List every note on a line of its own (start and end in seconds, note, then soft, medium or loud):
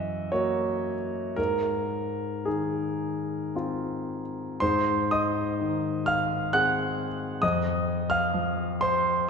0.00 1.33 F#2 soft
0.00 0.94 E3 soft
0.00 0.32 D#5 medium
0.00 1.40 E5 medium
0.00 1.41 F#5 medium
0.32 1.34 A#3 soft
0.32 1.34 F#4 soft
0.32 1.37 C#5 medium
1.36 4.57 G#2 soft
1.36 2.47 A#4 medium
2.45 4.20 D#3 soft
2.45 3.55 G#4 soft
3.55 4.57 C4 soft
3.55 4.57 F4 soft
4.60 7.39 G#2 medium
4.60 5.07 C5 medium
4.60 5.10 C6 medium
5.11 6.04 D#5 medium
5.11 6.07 D#6 medium
5.61 7.07 D#3 soft
6.06 6.50 F5 medium
6.06 6.52 F6 medium
6.53 7.39 C4 soft
6.53 7.39 G#4 soft
6.53 7.39 F#5 medium
6.53 7.43 F#6 medium
7.42 9.30 F2 soft
7.42 8.08 D#5 medium
7.42 8.11 D#6 medium
8.10 8.78 F5 medium
8.10 8.81 F6 medium
8.34 9.30 F3 soft
8.81 9.26 C5 medium
8.81 9.28 C6 medium